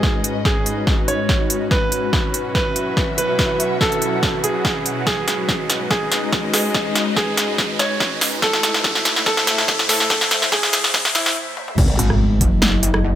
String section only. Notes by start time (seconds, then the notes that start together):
Already playing: G#3 C#4 F#4 B4 D#5
2.56 E5
5.07 G#3
5.55 D#5
8.42 E4
8.58 A3
9.15 C5
9.31 E5